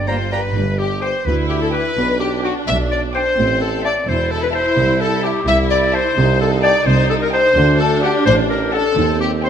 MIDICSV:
0, 0, Header, 1, 11, 480
1, 0, Start_track
1, 0, Tempo, 468384
1, 572, Time_signature, 6, 3, 24, 8
1, 9733, End_track
2, 0, Start_track
2, 0, Title_t, "Oboe"
2, 0, Program_c, 0, 68
2, 81, Note_on_c, 0, 82, 46
2, 170, Note_off_c, 0, 82, 0
2, 332, Note_on_c, 0, 82, 44
2, 420, Note_off_c, 0, 82, 0
2, 9733, End_track
3, 0, Start_track
3, 0, Title_t, "Violin section"
3, 0, Program_c, 1, 48
3, 87, Note_on_c, 1, 79, 43
3, 169, Note_off_c, 1, 79, 0
3, 338, Note_on_c, 1, 79, 43
3, 420, Note_off_c, 1, 79, 0
3, 1065, Note_on_c, 1, 79, 67
3, 1066, Note_on_c, 1, 86, 69
3, 1242, Note_off_c, 1, 79, 0
3, 1242, Note_off_c, 1, 86, 0
3, 1782, Note_on_c, 1, 79, 69
3, 1784, Note_on_c, 1, 86, 64
3, 1959, Note_off_c, 1, 79, 0
3, 1960, Note_off_c, 1, 86, 0
3, 2503, Note_on_c, 1, 79, 71
3, 2506, Note_on_c, 1, 86, 70
3, 2681, Note_off_c, 1, 79, 0
3, 2683, Note_off_c, 1, 86, 0
3, 3221, Note_on_c, 1, 86, 71
3, 3222, Note_on_c, 1, 79, 70
3, 3401, Note_off_c, 1, 79, 0
3, 3401, Note_off_c, 1, 86, 0
3, 3938, Note_on_c, 1, 81, 71
3, 3940, Note_on_c, 1, 76, 70
3, 4116, Note_off_c, 1, 81, 0
3, 4117, Note_off_c, 1, 76, 0
3, 4644, Note_on_c, 1, 76, 69
3, 4647, Note_on_c, 1, 81, 77
3, 4827, Note_off_c, 1, 76, 0
3, 4829, Note_off_c, 1, 81, 0
3, 5365, Note_on_c, 1, 81, 78
3, 5368, Note_on_c, 1, 76, 73
3, 5546, Note_off_c, 1, 81, 0
3, 5548, Note_off_c, 1, 76, 0
3, 6083, Note_on_c, 1, 76, 74
3, 6086, Note_on_c, 1, 81, 73
3, 6262, Note_off_c, 1, 76, 0
3, 6264, Note_off_c, 1, 81, 0
3, 6796, Note_on_c, 1, 79, 88
3, 6797, Note_on_c, 1, 81, 80
3, 6975, Note_off_c, 1, 79, 0
3, 6975, Note_off_c, 1, 81, 0
3, 7507, Note_on_c, 1, 79, 80
3, 7511, Note_on_c, 1, 81, 77
3, 7687, Note_off_c, 1, 79, 0
3, 7689, Note_off_c, 1, 81, 0
3, 8232, Note_on_c, 1, 78, 85
3, 8233, Note_on_c, 1, 81, 79
3, 8410, Note_off_c, 1, 78, 0
3, 8411, Note_off_c, 1, 81, 0
3, 8948, Note_on_c, 1, 81, 74
3, 8950, Note_on_c, 1, 78, 75
3, 9129, Note_off_c, 1, 81, 0
3, 9130, Note_off_c, 1, 78, 0
3, 9672, Note_on_c, 1, 84, 70
3, 9675, Note_on_c, 1, 79, 71
3, 9733, Note_off_c, 1, 79, 0
3, 9733, Note_off_c, 1, 84, 0
3, 9733, End_track
4, 0, Start_track
4, 0, Title_t, "Clarinet"
4, 0, Program_c, 2, 71
4, 76, Note_on_c, 2, 72, 77
4, 321, Note_off_c, 2, 72, 0
4, 327, Note_on_c, 2, 71, 81
4, 809, Note_on_c, 2, 67, 90
4, 824, Note_off_c, 2, 71, 0
4, 1046, Note_on_c, 2, 72, 101
4, 1061, Note_off_c, 2, 67, 0
4, 1285, Note_on_c, 2, 71, 82
4, 1301, Note_off_c, 2, 72, 0
4, 1520, Note_off_c, 2, 71, 0
4, 1526, Note_on_c, 2, 67, 83
4, 1650, Note_off_c, 2, 67, 0
4, 1658, Note_on_c, 2, 69, 78
4, 1713, Note_off_c, 2, 69, 0
4, 1765, Note_on_c, 2, 71, 104
4, 2243, Note_off_c, 2, 71, 0
4, 2249, Note_on_c, 2, 67, 85
4, 2360, Note_off_c, 2, 67, 0
4, 2503, Note_on_c, 2, 66, 84
4, 2611, Note_off_c, 2, 66, 0
4, 2740, Note_on_c, 2, 76, 88
4, 2849, Note_off_c, 2, 76, 0
4, 2982, Note_on_c, 2, 74, 91
4, 3091, Note_off_c, 2, 74, 0
4, 3228, Note_on_c, 2, 72, 112
4, 3694, Note_off_c, 2, 72, 0
4, 3701, Note_on_c, 2, 69, 82
4, 3808, Note_off_c, 2, 69, 0
4, 3944, Note_on_c, 2, 74, 107
4, 4188, Note_on_c, 2, 72, 90
4, 4204, Note_off_c, 2, 74, 0
4, 4421, Note_on_c, 2, 69, 96
4, 4436, Note_off_c, 2, 72, 0
4, 4539, Note_off_c, 2, 69, 0
4, 4545, Note_on_c, 2, 71, 82
4, 4597, Note_off_c, 2, 71, 0
4, 4660, Note_on_c, 2, 72, 108
4, 5135, Note_on_c, 2, 69, 101
4, 5150, Note_off_c, 2, 72, 0
4, 5368, Note_on_c, 2, 67, 97
4, 5383, Note_off_c, 2, 69, 0
4, 5606, Note_off_c, 2, 67, 0
4, 5613, Note_on_c, 2, 76, 118
4, 5719, Note_off_c, 2, 76, 0
4, 5847, Note_on_c, 2, 74, 108
4, 6091, Note_on_c, 2, 72, 115
4, 6106, Note_off_c, 2, 74, 0
4, 6563, Note_off_c, 2, 72, 0
4, 6569, Note_on_c, 2, 69, 106
4, 6674, Note_off_c, 2, 69, 0
4, 6796, Note_on_c, 2, 74, 119
4, 7030, Note_on_c, 2, 72, 102
4, 7046, Note_off_c, 2, 74, 0
4, 7267, Note_off_c, 2, 72, 0
4, 7273, Note_on_c, 2, 69, 104
4, 7327, Note_off_c, 2, 69, 0
4, 7398, Note_on_c, 2, 70, 93
4, 7450, Note_off_c, 2, 70, 0
4, 7513, Note_on_c, 2, 72, 124
4, 7981, Note_off_c, 2, 72, 0
4, 7997, Note_on_c, 2, 69, 104
4, 8228, Note_on_c, 2, 67, 114
4, 8244, Note_off_c, 2, 69, 0
4, 8454, Note_off_c, 2, 67, 0
4, 8460, Note_on_c, 2, 72, 116
4, 8571, Note_off_c, 2, 72, 0
4, 8707, Note_on_c, 2, 70, 102
4, 8945, Note_off_c, 2, 70, 0
4, 8951, Note_on_c, 2, 69, 113
4, 9424, Note_off_c, 2, 69, 0
4, 9433, Note_on_c, 2, 67, 88
4, 9542, Note_off_c, 2, 67, 0
4, 9678, Note_on_c, 2, 72, 97
4, 9733, Note_off_c, 2, 72, 0
4, 9733, End_track
5, 0, Start_track
5, 0, Title_t, "Violin section"
5, 0, Program_c, 3, 48
5, 77, Note_on_c, 3, 72, 62
5, 78, Note_on_c, 3, 82, 40
5, 160, Note_off_c, 3, 82, 0
5, 321, Note_off_c, 3, 72, 0
5, 332, Note_on_c, 3, 82, 39
5, 334, Note_on_c, 3, 71, 66
5, 414, Note_off_c, 3, 82, 0
5, 814, Note_on_c, 3, 67, 74
5, 818, Note_off_c, 3, 71, 0
5, 1053, Note_off_c, 3, 67, 0
5, 1055, Note_on_c, 3, 72, 65
5, 1294, Note_off_c, 3, 72, 0
5, 1303, Note_on_c, 3, 71, 67
5, 1385, Note_off_c, 3, 71, 0
5, 1529, Note_on_c, 3, 67, 72
5, 1579, Note_off_c, 3, 67, 0
5, 1657, Note_on_c, 3, 69, 67
5, 1776, Note_off_c, 3, 69, 0
5, 1786, Note_on_c, 3, 71, 87
5, 2254, Note_off_c, 3, 71, 0
5, 2271, Note_on_c, 3, 67, 73
5, 2506, Note_off_c, 3, 67, 0
5, 2512, Note_on_c, 3, 66, 59
5, 2594, Note_off_c, 3, 66, 0
5, 2748, Note_on_c, 3, 76, 95
5, 2830, Note_off_c, 3, 76, 0
5, 2992, Note_on_c, 3, 74, 62
5, 3074, Note_off_c, 3, 74, 0
5, 3229, Note_on_c, 3, 72, 82
5, 3695, Note_off_c, 3, 72, 0
5, 3705, Note_on_c, 3, 69, 80
5, 3941, Note_off_c, 3, 69, 0
5, 3951, Note_on_c, 3, 74, 75
5, 4032, Note_off_c, 3, 74, 0
5, 4176, Note_on_c, 3, 72, 75
5, 4412, Note_off_c, 3, 72, 0
5, 4421, Note_on_c, 3, 69, 79
5, 4536, Note_off_c, 3, 69, 0
5, 4542, Note_on_c, 3, 71, 75
5, 4659, Note_off_c, 3, 71, 0
5, 4662, Note_on_c, 3, 72, 83
5, 5127, Note_off_c, 3, 72, 0
5, 5139, Note_on_c, 3, 69, 82
5, 5371, Note_off_c, 3, 69, 0
5, 5375, Note_on_c, 3, 67, 58
5, 5457, Note_off_c, 3, 67, 0
5, 5617, Note_on_c, 3, 76, 94
5, 5699, Note_off_c, 3, 76, 0
5, 5849, Note_on_c, 3, 74, 84
5, 5931, Note_off_c, 3, 74, 0
5, 6096, Note_on_c, 3, 72, 88
5, 6558, Note_off_c, 3, 72, 0
5, 6567, Note_on_c, 3, 69, 77
5, 6795, Note_on_c, 3, 74, 75
5, 6802, Note_off_c, 3, 69, 0
5, 7030, Note_off_c, 3, 74, 0
5, 7043, Note_on_c, 3, 72, 85
5, 7273, Note_off_c, 3, 72, 0
5, 7285, Note_on_c, 3, 69, 72
5, 7331, Note_off_c, 3, 69, 0
5, 7403, Note_on_c, 3, 70, 85
5, 7515, Note_off_c, 3, 70, 0
5, 7518, Note_on_c, 3, 72, 93
5, 7983, Note_on_c, 3, 69, 86
5, 7984, Note_off_c, 3, 72, 0
5, 8222, Note_off_c, 3, 69, 0
5, 8238, Note_on_c, 3, 67, 78
5, 8320, Note_off_c, 3, 67, 0
5, 8476, Note_on_c, 3, 72, 107
5, 8558, Note_off_c, 3, 72, 0
5, 8729, Note_on_c, 3, 70, 66
5, 8811, Note_off_c, 3, 70, 0
5, 8960, Note_on_c, 3, 69, 94
5, 9428, Note_off_c, 3, 69, 0
5, 9441, Note_on_c, 3, 67, 83
5, 9523, Note_off_c, 3, 67, 0
5, 9690, Note_on_c, 3, 72, 70
5, 9733, Note_off_c, 3, 72, 0
5, 9733, End_track
6, 0, Start_track
6, 0, Title_t, "Viola section"
6, 0, Program_c, 4, 48
6, 75, Note_on_c, 4, 65, 58
6, 320, Note_off_c, 4, 65, 0
6, 326, Note_on_c, 4, 67, 48
6, 571, Note_off_c, 4, 67, 0
6, 1300, Note_on_c, 4, 64, 85
6, 1978, Note_off_c, 4, 64, 0
6, 2022, Note_on_c, 4, 62, 76
6, 3464, Note_off_c, 4, 62, 0
6, 3467, Note_on_c, 4, 60, 78
6, 4166, Note_off_c, 4, 60, 0
6, 4176, Note_on_c, 4, 64, 84
6, 5582, Note_off_c, 4, 64, 0
6, 5606, Note_on_c, 4, 64, 86
6, 6308, Note_off_c, 4, 64, 0
6, 6321, Note_on_c, 4, 63, 93
6, 7720, Note_off_c, 4, 63, 0
6, 7745, Note_on_c, 4, 62, 100
6, 9160, Note_off_c, 4, 62, 0
6, 9190, Note_on_c, 4, 60, 75
6, 9733, Note_off_c, 4, 60, 0
6, 9733, End_track
7, 0, Start_track
7, 0, Title_t, "French horn section"
7, 0, Program_c, 5, 60
7, 88, Note_on_c, 5, 55, 47
7, 92, Note_on_c, 5, 58, 48
7, 175, Note_off_c, 5, 55, 0
7, 178, Note_off_c, 5, 58, 0
7, 327, Note_on_c, 5, 55, 48
7, 328, Note_on_c, 5, 58, 43
7, 415, Note_off_c, 5, 55, 0
7, 416, Note_off_c, 5, 58, 0
7, 9733, End_track
8, 0, Start_track
8, 0, Title_t, "Bassoon"
8, 0, Program_c, 6, 70
8, 77, Note_on_c, 6, 55, 46
8, 166, Note_off_c, 6, 55, 0
8, 322, Note_on_c, 6, 55, 40
8, 412, Note_off_c, 6, 55, 0
8, 9733, End_track
9, 0, Start_track
9, 0, Title_t, "Cello section"
9, 0, Program_c, 7, 48
9, 0, Note_on_c, 7, 43, 50
9, 485, Note_off_c, 7, 43, 0
9, 572, Note_on_c, 7, 43, 78
9, 1150, Note_off_c, 7, 43, 0
9, 1300, Note_on_c, 7, 38, 66
9, 1871, Note_off_c, 7, 38, 0
9, 2018, Note_on_c, 7, 47, 72
9, 2592, Note_off_c, 7, 47, 0
9, 2742, Note_on_c, 7, 47, 73
9, 3314, Note_off_c, 7, 47, 0
9, 3465, Note_on_c, 7, 45, 76
9, 4031, Note_off_c, 7, 45, 0
9, 4180, Note_on_c, 7, 40, 66
9, 4747, Note_off_c, 7, 40, 0
9, 4891, Note_on_c, 7, 48, 80
9, 5461, Note_off_c, 7, 48, 0
9, 5613, Note_on_c, 7, 48, 76
9, 6177, Note_off_c, 7, 48, 0
9, 6323, Note_on_c, 7, 48, 85
9, 6889, Note_off_c, 7, 48, 0
9, 7040, Note_on_c, 7, 48, 94
9, 7604, Note_off_c, 7, 48, 0
9, 7751, Note_on_c, 7, 50, 86
9, 8322, Note_off_c, 7, 50, 0
9, 8470, Note_on_c, 7, 45, 78
9, 9042, Note_off_c, 7, 45, 0
9, 9198, Note_on_c, 7, 51, 84
9, 9733, Note_off_c, 7, 51, 0
9, 9733, End_track
10, 0, Start_track
10, 0, Title_t, "Double bass section"
10, 0, Program_c, 8, 48
10, 0, Note_on_c, 8, 31, 56
10, 487, Note_off_c, 8, 31, 0
10, 575, Note_on_c, 8, 31, 80
10, 1152, Note_off_c, 8, 31, 0
10, 1296, Note_on_c, 8, 38, 80
10, 1869, Note_off_c, 8, 38, 0
10, 2018, Note_on_c, 8, 35, 67
10, 2592, Note_off_c, 8, 35, 0
10, 2743, Note_on_c, 8, 35, 78
10, 3315, Note_off_c, 8, 35, 0
10, 3465, Note_on_c, 8, 33, 73
10, 4031, Note_off_c, 8, 33, 0
10, 4180, Note_on_c, 8, 28, 84
10, 4747, Note_off_c, 8, 28, 0
10, 4897, Note_on_c, 8, 36, 77
10, 5464, Note_off_c, 8, 36, 0
10, 5614, Note_on_c, 8, 36, 91
10, 6178, Note_off_c, 8, 36, 0
10, 6326, Note_on_c, 8, 36, 79
10, 6890, Note_off_c, 8, 36, 0
10, 7039, Note_on_c, 8, 36, 81
10, 7604, Note_off_c, 8, 36, 0
10, 7756, Note_on_c, 8, 38, 91
10, 8324, Note_off_c, 8, 38, 0
10, 8476, Note_on_c, 8, 33, 90
10, 9045, Note_off_c, 8, 33, 0
10, 9194, Note_on_c, 8, 39, 92
10, 9733, Note_off_c, 8, 39, 0
10, 9733, End_track
11, 0, Start_track
11, 0, Title_t, "Tuba"
11, 0, Program_c, 10, 58
11, 0, Note_on_c, 10, 31, 52
11, 489, Note_off_c, 10, 31, 0
11, 571, Note_on_c, 10, 31, 81
11, 1150, Note_off_c, 10, 31, 0
11, 1302, Note_on_c, 10, 38, 77
11, 1872, Note_off_c, 10, 38, 0
11, 2023, Note_on_c, 10, 35, 84
11, 2594, Note_off_c, 10, 35, 0
11, 2747, Note_on_c, 10, 35, 72
11, 3317, Note_off_c, 10, 35, 0
11, 3466, Note_on_c, 10, 33, 84
11, 4031, Note_off_c, 10, 33, 0
11, 4179, Note_on_c, 10, 28, 77
11, 4747, Note_off_c, 10, 28, 0
11, 4890, Note_on_c, 10, 36, 90
11, 5461, Note_off_c, 10, 36, 0
11, 5610, Note_on_c, 10, 36, 87
11, 6176, Note_off_c, 10, 36, 0
11, 6321, Note_on_c, 10, 36, 102
11, 6888, Note_off_c, 10, 36, 0
11, 7032, Note_on_c, 10, 36, 77
11, 7600, Note_off_c, 10, 36, 0
11, 7754, Note_on_c, 10, 38, 103
11, 8323, Note_off_c, 10, 38, 0
11, 8474, Note_on_c, 10, 33, 88
11, 9044, Note_off_c, 10, 33, 0
11, 9197, Note_on_c, 10, 39, 91
11, 9733, Note_off_c, 10, 39, 0
11, 9733, End_track
0, 0, End_of_file